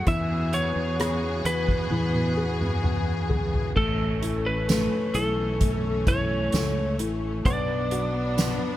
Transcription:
Already playing: C#3
0.06 E2 E3 B3 F#4 G#4 E5, kick, closed hi-hat
0.53 B3 C#5, closed hi-hat
0.76 E2
0.99 G#4, cross-stick, closed hi-hat
1.45 E2 B3 B4, closed hi-hat
1.69 kick
1.90 E2 E3, high tom
2.15 high tom
2.37 G#4
2.61 mid tom
2.83 B3, mid tom
3.29 G#4, floor tom
3.54 floor tom
3.76 A1 E3 A3 C#4 A4, kick, crash
4.22 E4, closed hi-hat
4.46 B4
4.68 A3, snare, closed hi-hat, tambourine
5.14 B1 E4 A4, closed hi-hat
5.61 A3, kick, closed hi-hat
6.07 E4 C#5, kick, closed hi-hat
6.52 C#2 A3, snare, closed hi-hat, tambourine
6.99 A1 E4, closed hi-hat
7.45 B1 F#3 B3 D4 D5, kick, closed hi-hat
7.91 F#4, closed hi-hat
8.37 B3, snare, closed hi-hat, tambourine

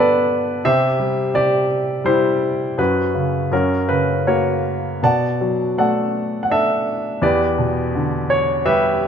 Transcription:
Already playing: G2 D3 G3 B3 D4 A4 B4 D5
0.65 C3 G4 C5 E5
0.99 G3
1.34 C3 G4 D5
2.04 G3 E4 G4 C5
2.78 F#2 F#4 B4
3.15 C#3
3.52 F#2 C#4 F#4 A#4
3.89 C#3 B4
4.27 A#3 F#4 A#4 C#5
5.03 B2 D5 F#5 A5
5.41 F#3
5.78 A3 A4 D5 F#5
6.43 F#5
6.50 D4 A4 E5
7.22 E2 G4 B4 D5
7.58 B2
7.95 D3
8.30 C#5
8.66 G3 G4 B4 E5

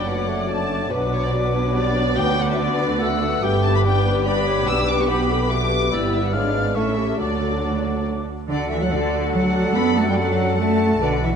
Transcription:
Already playing: F#1 F#2 A3 D4 F#4 D5 D6
0.07 B3 D4 F#4 C#5 F#5
0.29 A3
0.49 A3 D4 F#4 A5
0.90 B1 B2 F#3 B3 D4 F#4 B4 D6
1.13 C#5
1.24 D5
1.33 F#3 D4 F#4 B4 D5
1.54 C#5
1.74 G3 D4 F#4 D5
1.97 F#3
2.16 D2 D3 B3 F#4 B4 G5 D6
2.39 F#5
2.51 E5
2.59 B3 F#4 D5
3.01 A3 B3 F#4 F#5 E6
3.22 A3
3.42 G1 G2 B3 D4 G4 B4 G5 D6
3.63 A5
3.75 B5
3.84 G3 B3 G4 B4 G5
4.06 B4
4.25 G3 B3 G4 D5 B5 D6
4.47 C#5
4.67 B1 B2 G3 B3 G4 B4 E6
4.87 D6
5.00 C#6
5.08 B3 G4 B5
5.32 A4
5.49 A3 B3 G4 B4 D6
5.91 G1 G2 G3 B3 E4 G4 B4 D5 E6
6.14 E5
6.25 F#5
6.33 G#1 G#2 G#3 B3 D4 C#5 D5 F5 F6
6.56 B4
6.75 A1 A2 A3 C#4 E4 A4 E5 C#6
6.98 G4
7.18 D2 D3 F#3 A3 D4 F#4 A4 D5 D6
8.49 D2 D3 F#4 A4 D5 F#5
8.69 E3 E5
8.80 F#3 F#5
8.91 D3 D5
9.33 F#3 F#5
9.76 F#2 B3 B5
9.97 A3 A5
10.08 G3 G5
10.18 F#3 F#5
10.60 A3 A5
11.02 B1 B2 D3 F#4 B4 D5 F#5
11.22 E3 E5

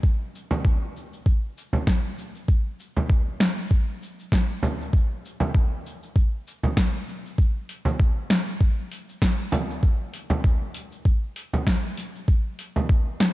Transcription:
0.03 kick, cabasa
0.35 cabasa
0.51 frame drum, cabasa
0.65 kick, cabasa
0.97 cabasa
1.13 cabasa
1.26 kick, cabasa
1.58 cabasa
1.73 frame drum, cabasa
1.87 kick, snare, cabasa
2.18 cabasa
2.35 cabasa
2.48 kick, cabasa
2.80 cabasa
2.96 frame drum, cabasa
3.10 kick, cabasa
3.40 snare, cabasa
3.58 cabasa
3.71 kick, cabasa
4.03 cabasa
4.20 cabasa
4.32 kick, snare, cabasa
4.63 frame drum, cabasa
4.81 cabasa
4.93 kick, cabasa
5.25 cabasa
5.40 frame drum, cabasa
5.55 kick, cabasa
5.86 cabasa
6.03 cabasa
6.16 kick, cabasa
6.47 cabasa
6.63 frame drum, cabasa
6.77 kick, snare, cabasa
7.09 cabasa
7.26 cabasa
7.38 kick, cabasa
7.69 open hi-hat, cabasa
7.85 frame drum, cabasa
8.00 kick, cabasa
8.30 snare, open hi-hat, cabasa
8.48 cabasa
8.61 kick, cabasa
8.92 open hi-hat, cabasa
9.09 cabasa
9.22 kick, snare, cabasa
9.52 open hi-hat, frame drum, cabasa
9.70 cabasa
9.83 kick, cabasa
10.14 open hi-hat, cabasa
10.30 frame drum, cabasa
10.44 kick, cabasa
10.74 open hi-hat, cabasa
10.92 cabasa
11.05 kick, cabasa
11.36 open hi-hat, cabasa
11.53 frame drum, cabasa
11.67 kick, snare, cabasa
11.97 open hi-hat, cabasa
12.15 cabasa
12.28 kick, cabasa
12.59 open hi-hat, cabasa
12.76 frame drum, cabasa
12.89 kick, cabasa
13.20 snare, open hi-hat, cabasa

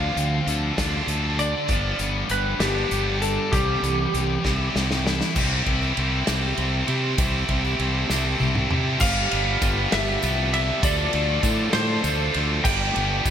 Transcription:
Already playing: D3 F3 D4 F4 F5
0.16 D2 D3 C4 D4, closed hi-hat
0.47 D2 D3 D4 A4, closed hi-hat
0.77 D2 D3 D4 F4, kick, snare, closed hi-hat
1.07 D2 A4, closed hi-hat
1.38 D3 D4 D5, closed hi-hat
1.68 G1 F3 G3 B3 D4, kick, closed hi-hat
1.99 G1 G3 B3 D4, closed hi-hat
2.29 G1 G3 D4 G4 B4, closed hi-hat
2.60 G1 G3 B3 D4 G4, snare, closed hi-hat
2.91 G1 G4, closed hi-hat
3.20 G3 D4 A4, closed hi-hat
3.52 C2 C3 E3 G3 G4, kick, closed hi-hat
3.82 C2 C3 E3 B3, closed hi-hat
4.14 C2 C3 E3 G4, closed hi-hat
4.44 C2 C3 E3 G3 E4, kick, snare
4.75 C2 G4, snare
4.91 snare
5.05 C3 E3 E4, snare
5.21 snare
5.34 C2 C3 E3 G3 C4 E4 G4 E5 B5 C6, kick, crash, tambourine
5.39 E4
5.66 C2 E4 G4, kick, ride
5.82 tambourine
5.96 C2 E3 G3 C4 E4 G4, ride
6.26 C2 C3 E3 G3 C4 E4 G4, snare, ride, tambourine
6.58 C2 C4 E4 G4, ride, tambourine
6.87 C3 G3 C4 E4 G4, ride
7.18 C2 C3 E3 G3 C4 E4 G4 A5, kick, ride, tambourine
7.48 C2 E4 G4, kick, ride
7.65 tambourine
7.78 C2 E3 G3 C4 E4 G4, ride
8.09 C2 C3 E3 G3 C4 E4 G4, snare, tambourine
8.38 C2 C4 E4 G4, high tom, tambourine
8.55 mid tom
8.69 C3 G3 C4 E4 G4, mid tom
8.74 E4
9.00 G1 G3 B3 D4 F4 G4 B4 F5 B5 D6, kick, crash, tambourine
9.31 G1 G3 B3 D4 G4 B4, ride, tambourine
9.62 G1 G3 B3 D4 G4 B4, kick, ride, tambourine
9.92 G1 G3 B3 D4 G4 B4 E5, snare, ride
10.08 tambourine
10.22 C2 G3 B3 D4 G4 B4, ride, tambourine
10.52 G3 B3 D4 G4 B4 E5, ride
10.81 D2 D3 F3 A3 D4 F4 A4 D5 C6, kick, ride, tambourine
10.99 tambourine
11.13 D2 D3 F3 A3 D4 F4 A4, ride, tambourine
11.43 A2 D3 F3 A3 D4 F4 A4, kick, ride, tambourine
11.73 A2 D3 F3 A3 D4 F4 A4 C5, snare, ride
12.03 D2 D3 F3 A3 D4 F4 A4, ride, tambourine
12.33 D2 D3 F3 A3 D4 F4 A4, ride
12.63 G1 G3 B3 D4 F4 G4 B4 G5 B5 D6, kick, tambourine, crash
12.81 tambourine
12.94 G1 G3 B3 D4 G4 B4, ride, tambourine
13.24 G1 G3 B3 D4 G4 B4, kick, ride, tambourine

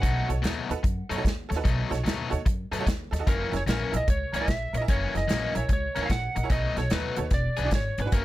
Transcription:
Already playing: F#5
0.02 B1 B2 F#3 A3 D#4, kick, closed hi-hat
0.28 B1 D#4 F#4 A4 C#5, muted overdriven electric guitar stroke, closed hi-hat
0.42 D#2 B2 F#3 A3 D#4, snare, closed hi-hat
0.69 D#2 D#4 F#4 A4 B4, muted overdriven electric guitar stroke, closed hi-hat
0.83 F#2, muted overdriven electric guitar stroke, kick, closed hi-hat
1.09 F#2 B2 F#3 A3 D#4 A4 C#5, closed hi-hat
1.16 D#4 F#4 A4 C#5
1.24 D#2, muted overdriven electric guitar stroke, kick, snare, closed hi-hat
1.49 D#2 A4 C#5, muted overdriven electric guitar stroke, closed hi-hat
1.53 D#4 F#4 A4, snare
1.57 B4
1.64 B1 B2 F#3 A3 D#4, kick, closed hi-hat
1.89 B1 D#4 F#4 A4 C#5, muted overdriven electric guitar stroke, closed hi-hat
1.93 snare
2.04 D#2 B2 F#3 A3 D#4, snare, closed hi-hat
2.30 D#2 D#4 F#4 A4 C#5, muted overdriven electric guitar stroke, closed hi-hat
2.46 F#2, muted overdriven electric guitar stroke, kick, closed hi-hat
2.71 F#2 B2 F#3 A3 D#4 A4 B4, closed hi-hat
2.79 D#4 F#4 A4 C#5
2.87 D#2, muted overdriven electric guitar stroke, kick, snare, closed hi-hat
3.11 D#2 A4 D#5, muted overdriven electric guitar stroke, snare, closed hi-hat
3.19 D#4 F#4 A4 D#5
3.27 F#1 F#2 E3 A#3 C#4 A#4, kick, closed hi-hat
3.51 F#1 E4 G#4 A#4 C#5, muted overdriven electric guitar stroke, snare, closed hi-hat
3.57 C#5
3.66 A#1 F#2 E3 A#3 C#4 A#4, snare, closed hi-hat
3.92 A#1 E4 G#4 A#4 E5, muted overdriven electric guitar stroke, closed hi-hat
3.97 D#5
4.08 C#2 C#5, muted overdriven electric guitar stroke, kick, closed hi-hat
4.32 C#2 F#2 E3 A#3 C#4 A#4 C#5 E5, closed hi-hat
4.40 E4 G#4 A#4 C#5
4.48 A#1, muted overdriven electric guitar stroke, kick, snare, closed hi-hat
4.73 A#1 A#4 C#5, muted overdriven electric guitar stroke, closed hi-hat
4.77 E4 G#4 D#5
4.82 A#4 E5
4.88 F#1 F#2 E3 A#3 C#4 C#5, kick, closed hi-hat
5.14 F#1 E4 G#4 A#4 D#5, muted overdriven electric guitar stroke, snare, closed hi-hat
5.28 A#1 F#2 E3 A#3 C#4, snare, closed hi-hat
5.53 A#1 E4 G#4 A#4 C#5 E5, muted overdriven electric guitar stroke, closed hi-hat
5.69 C#2, muted overdriven electric guitar stroke, kick, closed hi-hat
5.73 C#5
5.95 C#2 F#2 E3 A#3 C#4 A#4 C#5, closed hi-hat
6.02 E4 G#4 A#4 C#5
6.06 F5, kick, closed hi-hat
6.10 A#1 F#5, muted overdriven electric guitar stroke, snare
6.35 A#1 A#4 D#5, muted overdriven electric guitar stroke, closed hi-hat
6.43 E4 G#4 A#4 C#5
6.50 B1 B2 F#3 A3 D#4 D#5, kick, closed hi-hat
6.76 B1 D#4 F#4 A4 C#5, muted overdriven electric guitar stroke, snare, closed hi-hat
6.90 D#2 B2 F#3 A3 D#4 B4, snare, closed hi-hat
7.16 D#2 D#4 F#4 A4 C#5, muted overdriven electric guitar stroke, closed hi-hat
7.31 E1 D5, muted overdriven electric guitar stroke, kick, snare, closed hi-hat
7.57 B1 E3 B3 D4 G#4 B4, closed hi-hat
7.64 D4 F#4 G#4 D5
7.71 G#1, muted overdriven electric guitar stroke, kick, snare, closed hi-hat
7.75 C#5
7.98 G#1 G#4 C#5, muted overdriven electric guitar stroke, closed hi-hat
8.02 D4 B4
8.07 F#4 G#4 B4
8.12 F#1 F#2 E3 A#3 C#4 A#4, kick, closed hi-hat

